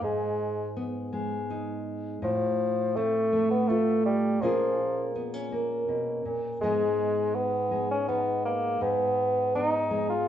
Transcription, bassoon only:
0.04 G#3
2.24 F3
2.96 A3
3.51 B3
3.68 A3
4.06 G3
4.41 F3
6.61 G#3
7.35 B3
7.91 C#4
8.09 B3
8.45 A#3
8.82 B3
9.55 D#4
10.10 F4

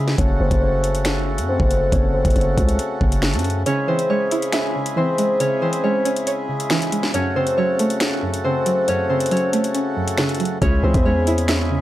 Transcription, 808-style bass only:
Already playing: C#3
0.18 F#1
0.40 F#1
0.51 F#1
1.38 F#2
1.60 F#1
1.92 F#1
2.25 F#1
2.36 F#1
2.58 C#2
3.01 F#1
3.34 F#2
10.62 C#2
10.83 C#2
10.94 E2

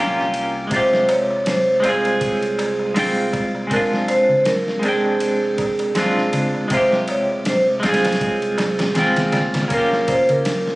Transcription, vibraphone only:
0.74 C5
1.11 C#5
1.48 C5
1.86 G#4
3.72 A#4
4.10 C5
4.46 A#4
4.84 G#4
6.73 C5
7.10 C#5
7.48 C5
7.87 G#4
9.72 A#4
10.08 C5
10.30 A#4

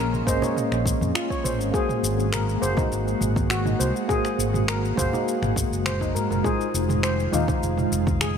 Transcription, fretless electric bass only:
Already playing: A#1
0.27 G#1
0.72 A#1
1.01 F2
1.45 A#1
1.60 G#1
2.03 G#1
2.62 F#1
2.91 G#1
3.21 G#1
3.80 C2
4.39 G#1
4.98 F#1
5.42 G#1
5.72 F#1
6.15 G#2
6.31 F#1
6.74 F1
7.33 D#2
7.62 F1
7.92 F1

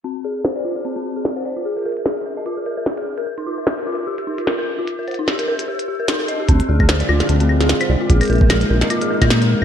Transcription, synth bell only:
0.04 C4
0.24 G#4
0.45 C5
0.56 D5
0.65 F4
0.76 G#4
0.85 C4
0.96 C4
1.16 G#4
1.36 C5
1.45 D5
1.57 F4
1.65 G#4
1.77 A#4
1.86 A#4
2.06 G#4
2.26 A#4
2.37 D#5
2.46 F4
2.57 G#4
2.66 A#4
2.77 A#4
2.97 G#4
3.18 A#4
3.26 A#4
3.38 D#4
3.47 F4
3.58 A#4
3.67 A#4
3.87 F4
4.07 G4
4.18 A#4
4.27 D#4
4.38 F4
4.47 A#4
4.58 A#4
4.79 F4
4.99 A#4
5.08 C5
5.19 D#4
5.28 G4
5.39 A#4
5.48 A#4
5.68 G4
5.88 G4
5.99 A#4
6.08 D#4
6.20 A#4
6.28 D#5
6.40 G4
6.49 C4
6.69 G#4
6.89 C5
7.00 D5
7.09 F4
7.20 G#4
7.29 C4
7.40 C4
7.61 G#4
7.81 C5
7.90 D5
8.01 F4
8.10 G#4
8.21 A#4
8.30 A#4
8.50 G#4
8.70 A#4
8.81 D#5
8.90 F4
9.01 G#4
9.10 A#4
9.22 A#4
9.42 G#4

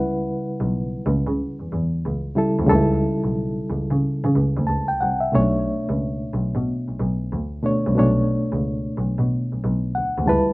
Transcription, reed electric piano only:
Already playing: C#3 G3 E4 B4 F#5
2.35 C#3 G3 E4 A4
2.66 C#3 G3 D#4 A4
2.75 E4
4.67 A5
4.88 G5
5.01 F#5
5.21 E5
5.32 B2 A3 C#4 C#5
5.40 D4
7.63 B2 A3 D4 C#5
7.95 B2 A3 D4 C#5
9.95 F#5
10.26 C#3 G3 E4 B4 A5

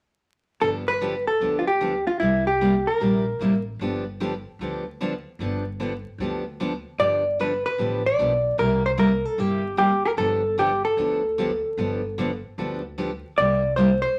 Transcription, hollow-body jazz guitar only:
0.61 A4
0.88 B4
1.27 A4
1.59 F4
1.67 G4
2.07 F4
2.20 E4
2.47 G4
2.87 A#4
7.00 D5
7.41 B4
7.66 B4
8.06 D5
8.59 A#4
8.86 C5
8.99 A#4
9.25 A4
9.40 G4
9.78 G4
10.05 A#4
10.18 A4
10.59 G4
10.85 A4
13.38 D5
13.76 C5
14.02 C5

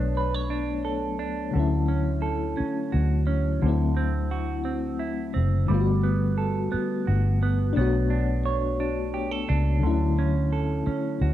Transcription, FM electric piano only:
Already playing: F#3 A3 B3 D4 C#5
1.51 D3 F#3 A3
1.57 C#4 E4
3.60 D3 F#3
3.64 A3 C4
3.68 E4
5.66 D3 G3
5.70 A3 B3 F4
5.80 F#4
7.73 A3 B3 D4
7.78 F#4 C#5
9.79 D3 F#3
9.83 A3 C#4 E4

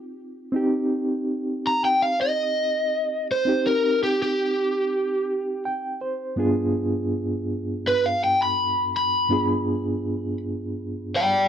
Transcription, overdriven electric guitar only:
1.67 A#5
1.85 G5
2.02 F5
2.21 D#5
3.31 C5
3.67 A#4
4.03 G4
4.22 G4
7.87 B4
8.06 F5
8.24 G5
8.42 B5
8.97 B5
11.16 D5 G5

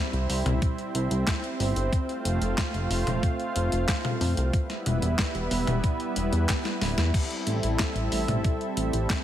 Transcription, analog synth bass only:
0.13 C2
0.29 C2
0.46 C2
0.95 C2
1.11 C2
1.60 G1
1.76 G1
2.25 F1
2.41 F1
2.74 F1
2.90 F1
3.07 F1
3.56 F1
3.72 F1
4.21 F2
4.37 C2
4.86 E1
5.02 E1
5.35 E1
5.51 E1
5.68 E1
6.16 E1
6.33 E2
6.81 D1
6.98 E2
7.47 A1
7.63 A1
7.95 A1
8.12 A1
8.28 A1
8.77 A1
8.93 A1

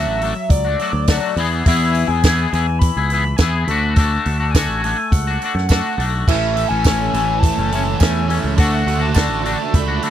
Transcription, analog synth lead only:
Already playing: E5
0.50 D5
1.67 E5
2.08 G#5
2.49 G#5
2.79 B5
3.37 G#5
3.64 B5
3.94 A5
4.51 G#5
5.12 F#5
6.28 E5
6.68 G#5
7.09 G#5
7.39 A5
8.00 G#5
8.60 F#5
9.01 A5
9.47 A5
9.75 B5

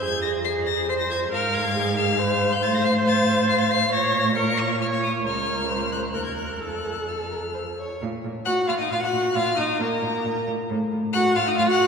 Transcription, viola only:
0.02 G#4
0.45 G#4
0.89 C5
1.32 A#4
1.76 G#4
2.19 C5
2.63 C5
3.92 C#5
4.37 A#4
4.81 C#5
5.25 C#5
5.69 C5
6.14 A#4
6.60 A4
8.46 F#4
8.68 F4
8.80 D#4
8.91 F4
9.03 F#4
9.35 F4
9.58 D#4
9.81 A#3
11.14 F#4
11.36 F4
11.47 D#4
11.58 F4
11.68 F#4

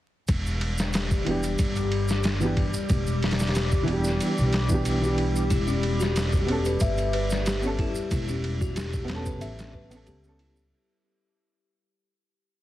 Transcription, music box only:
5.50 E4
5.67 C#4
6.00 F#4
6.16 G4
6.33 A4
6.66 B4
6.81 E5
7.14 B4
7.47 G4
7.79 E4
8.11 E4
8.29 C#4
8.61 F#4
8.76 G4
8.94 A4
9.26 B4
9.41 E5
9.74 B4
10.07 G4
10.40 E4

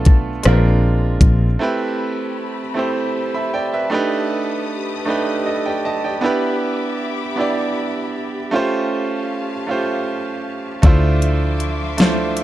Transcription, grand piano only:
Already playing: A3 B3 D4 F4 A4
0.43 G#3 C4 D4 F4
0.48 A#4
1.59 A3 C4 E4 G4
1.63 B4
2.74 A3 C4 E4 G4
2.79 C5
3.34 E5 B5
3.54 D5 G5
3.74 B4 E5
3.90 A3 D4 D#4 G4
3.94 B4
5.05 A3 D4 D#4 G4
5.10 B4
5.46 A4 D#5
5.66 D5 G5
5.85 D#5 A5
6.04 D5 G5
6.21 B3 D4 E4 G4
6.26 B4
7.36 B3 D4 E4 G4
7.41 D5
8.51 A3 C#4 F4 G4
8.56 C5
9.67 A3 C#4 F4 G4
9.71 C5
10.82 A3 D4 E4 F4
10.86 C5
11.97 A3 D4 E4 F4
12.02 C5

